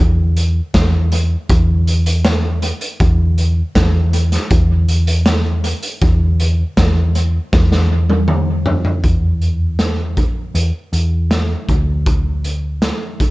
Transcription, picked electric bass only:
0.00 E2
0.74 E2
1.50 E2
3.00 E2
3.75 E2
4.51 E2
6.02 E2
6.77 E2
7.53 E2
9.04 E2
10.55 E2
10.93 E2
11.69 D2

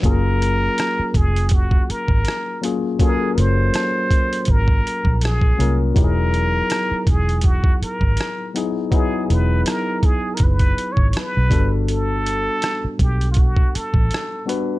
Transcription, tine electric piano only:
0.02 F#3 A#3 C#4 F4
0.06 G#4
2.61 F#3 A#3 C#4 F4 G#4
2.99 F#3 A#3 C#4 F4 A4
3.09 A#4
5.58 F#3 A#3 C#4 F4 A#4
5.94 F#3 B3 D#4 E4 G4
6.04 G#4
8.54 F#3 B3 D#4 E4 G#4
8.90 F#3 B3 D#4 E4 G#4
11.50 G3 B3 D4 F#4 A4
14.46 G3 B3 D4 F#4 B4

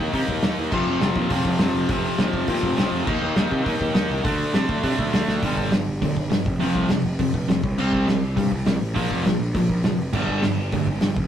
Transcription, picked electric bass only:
0.13 C3
0.29 D#2
0.44 D#2
0.59 D#2
0.72 F1
0.87 F1
1.02 F1
1.16 D#2
1.31 F1
1.45 F1
1.60 F1
1.75 F1
1.89 F1
2.19 D#2
2.33 F1
2.48 D#2
2.63 F1
2.78 F1
2.92 F2
3.07 D#2
3.21 D#2
3.36 D#2
3.51 C3
3.66 D#2
3.81 D#2
3.96 D#2
4.10 C2
4.25 D2
4.54 C3
4.69 D2
4.84 C3
4.99 D2
5.14 D2
5.28 D2
5.43 G1
5.72 G1
6.02 D2
6.17 G1
6.32 G1
6.46 F1
6.61 F1
6.75 C2
6.89 F1
7.05 F1
7.19 F1
7.34 F1
7.48 F1
7.63 C2
7.78 C2
8.08 C2
8.37 G2
8.52 C2
8.66 C2
8.80 A1
8.96 A#1
9.10 F1
9.25 A#1
9.39 A#1
9.54 A#1
9.69 A#1
9.83 F1
10.13 G1
10.42 G1
10.73 D2
10.87 G1
11.01 G1
11.17 F1

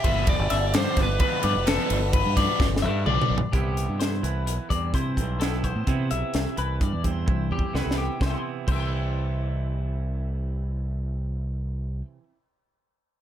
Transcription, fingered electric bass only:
0.04 G1
0.28 F1
0.39 G1
0.51 G1
0.74 G2
0.97 G1
1.44 G2
1.56 F1
1.90 G1
2.25 G2
2.60 G1
2.83 G2
3.06 B1
3.30 B1
3.53 C2
3.89 G2
4.23 C2
4.47 B1
4.70 E2
4.94 C3
5.17 B1
5.76 A2
5.87 C3
6.11 B1
6.34 C2
6.58 C2
6.81 G2
6.93 E2
7.28 C2
7.51 E2
7.74 C2
7.86 C2
8.21 C2
8.68 C2

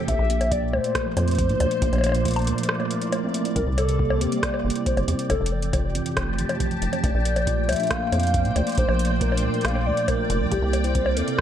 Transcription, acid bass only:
0.08 A#1
0.19 A#1
0.73 D2
1.17 F2
1.49 A#2
1.60 D2
1.82 A#1
1.93 A#1
2.47 D2
3.56 C2
3.67 C2
4.21 E2
4.65 G1
4.97 G1
5.08 E2
5.30 F1
5.41 F1
5.95 A1
6.17 F1
6.38 A1
6.82 F1
7.04 A#1
7.14 A#1
7.69 D2
8.12 F2
8.45 A#2
8.56 D2
8.78 A#1
8.89 A#1
9.43 D2
9.65 A#1
9.86 D2
10.30 F1
10.41 D2
10.52 C2
10.62 C2
11.17 E2

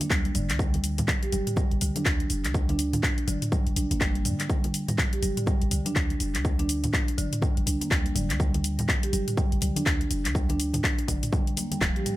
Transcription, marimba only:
0.01 A#3
0.11 G3
0.35 D3
0.59 G3
0.98 G3
1.23 G4
1.32 G3
1.47 D3
1.57 G3
1.81 D3
1.96 D4
2.54 G3
2.69 D4
3.28 D3
3.52 G3
3.77 D4
3.91 A#3
4.01 G3
4.25 D3
4.49 G3
4.88 G3
5.13 G4
5.23 G3
5.37 D3
5.47 G3
5.71 D3
5.86 D4
6.45 G3
6.59 D4
7.18 D3
7.42 G3
7.67 D4
7.81 A#3
7.91 G3
8.16 D3
8.40 G3
8.79 G3
9.04 G4
9.13 G3
9.28 D3
9.38 G3
9.62 D3
9.76 D4
10.35 G3
10.50 D4
11.08 D3
11.33 G3
11.57 A#3
11.72 G3
11.81 F3
11.96 G4
12.06 G3

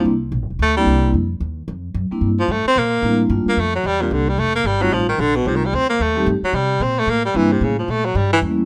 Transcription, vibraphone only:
0.77 G3 A#3 C4 D4 E4
2.11 G3 A#3 C4 D4 E4
3.03 G3 A#3 C4 D4 E4
3.30 G3 A3 A#3 D4 F4
4.00 G3 A#3 C4 D4 G4
4.80 G3 A3 C4 D#4 F4
5.45 G3 A3 C4 D#4 F4
6.16 G3 A3 C4 D#4 G4
7.34 G3 A#3 C4 D4 E4
8.42 G3 A3 A#3 C#4 E4

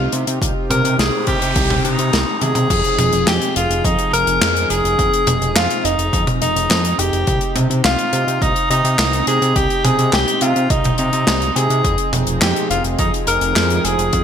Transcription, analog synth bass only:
0.13 C3
0.27 C3
0.42 C2
0.70 C3
0.84 C3
0.99 C2
1.27 C3
1.42 C3
1.56 C2
1.85 C3
1.99 C3
2.13 C2
2.42 C3
2.56 C3
2.70 F2
2.99 F1
3.13 F1
3.27 F2
3.56 F1
3.70 F1
3.84 F2
4.13 F1
4.27 F1
4.41 F2
4.70 F1
4.84 F1
4.99 F2
5.27 F1
5.41 F1
5.56 F2
5.84 F1
5.99 F1
6.13 F2
6.42 F1
6.56 F1
6.70 F2
6.99 F1
7.13 F1
7.27 C2
7.56 C3
7.70 C3
7.84 C2
8.13 C3
8.27 C3
8.42 C2
8.70 C3
8.84 C3
8.99 C2
9.27 C3
9.42 C3
9.56 C2
9.85 C3
9.99 C3
10.13 C2
10.42 C3
10.56 C3
10.70 C2
10.99 C3
11.13 C3
11.27 C2
11.56 C3
11.70 C3
11.85 F2
12.13 F1
12.27 F1
12.42 F2
12.70 F1
12.84 F1
12.99 F2
13.27 F1
13.41 F1
13.56 F2
13.84 F1
13.99 F1
14.13 F2

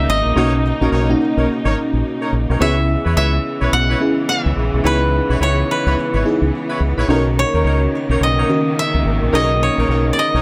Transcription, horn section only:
0.36 D#4 A#4 C#5
0.81 D#4 A#4 C#5
0.92 D#4 A#4 C#5
1.37 D#4 A#4 C#5
1.65 D#4 A#4 C#5
2.21 D#4 A#4 C#5
2.49 D#4 A#4 C#5
2.60 E4 B4 C#5
3.05 E4 B4 C#5
3.16 E4 B4 C#5
3.61 E4 B4 C#5
3.89 E4 B4 C#5
4.84 E4 B4 C#5
5.29 E4 B4 C#5
5.40 E4 B4 C#5
5.85 E4 B4 C#5
6.13 E4 B4 C#5
6.69 E4 B4 C#5
6.97 E4 B4 C#5
7.08 D#4 A#4 C#5
7.54 D#4 A#4 C#5
7.64 D#4 A#4 C#5
8.09 D#4 A#4 C#5
8.38 D#4 A#4 C#5
9.33 D#4 A#4 C#5
9.78 D#4 A#4 C#5
9.89 D#4 A#4 C#5
10.34 D#4 A#4 C#5

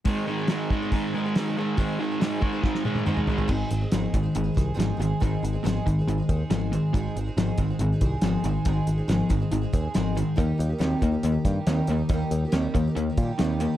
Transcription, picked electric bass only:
3.49 G#1
3.71 G#1
3.93 G#1
4.14 G#1
4.36 G#1
4.57 C2
4.77 G#1
4.98 G#1
5.22 G#1
5.43 G#1
5.65 G#1
5.87 G#1
6.07 G#1
6.29 D#2
6.51 G#1
6.94 G#1
7.16 G#1
7.37 G#1
7.58 G#1
7.79 G#1
8.02 C2
8.22 G#1
8.44 G#1
8.66 G#1
8.88 G#1
9.08 G#1
9.30 G#1
9.51 G#1
9.73 D#2
9.96 G#1
10.38 D#2
10.59 D#2
10.80 D#2
11.02 D#2
11.23 D#2
11.45 G2
11.67 D#2
11.88 D#2
12.09 D#2
12.31 D#2
12.53 D#2
12.75 D#2
12.96 D#2
13.18 A#2
13.40 D#2

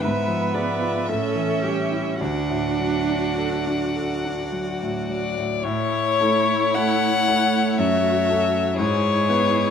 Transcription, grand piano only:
0.04 G#2
0.27 F3
0.54 G#3
0.81 F4
1.08 A2
1.35 E3
1.64 G3
1.92 E4
2.21 D2
2.49 A2
2.79 F#3
3.09 D4
3.38 A4
3.66 D4
3.96 A4
4.25 D4
4.52 F#3
4.82 A2
5.09 F#3
5.38 A2
5.65 A2
6.20 A3 E4 A4
6.76 A3 E4 A4
7.28 A3 E4 A4
7.79 F#2
8.30 C#4 F#4 A4
8.79 G#2
9.29 B3 E4 B4

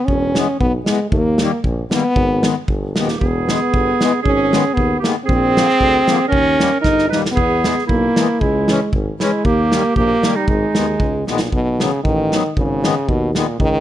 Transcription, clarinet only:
2.95 G4
3.20 G#4
4.22 G#4
4.74 G#4
4.99 G4
5.26 G#4
6.28 A#4
6.81 A#4
7.10 B4
7.35 G#4
7.87 E4
8.40 E4
9.19 E4
9.45 G4
9.97 G4
10.36 D#4
10.48 D#4

